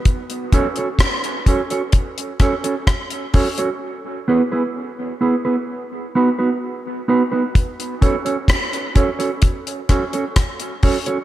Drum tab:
HH |xxxxxxxxxxxxxxox|----------------|xxxxxxxxxxxxxxox|
SD |----r-----r-r---|----------------|----r-----r-r---|
BD |o-o-o-o-o-o-o-o-|----------------|o-o-o-o-o-o-o-o-|